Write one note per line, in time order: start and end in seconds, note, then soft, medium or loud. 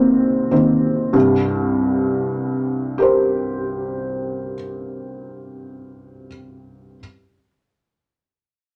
0.00 0.51 D#3 soft
0.00 0.51 A#3 soft
0.00 0.52 C4 soft
0.00 0.51 C5 medium
0.51 1.10 D#3 soft
0.51 1.10 A#3 soft
0.51 1.10 C4 soft
1.13 4.54 C2 soft
1.13 4.54 G2 soft
2.98 6.25 G4 soft
2.98 6.26 A#4 soft
3.02 6.28 C5 soft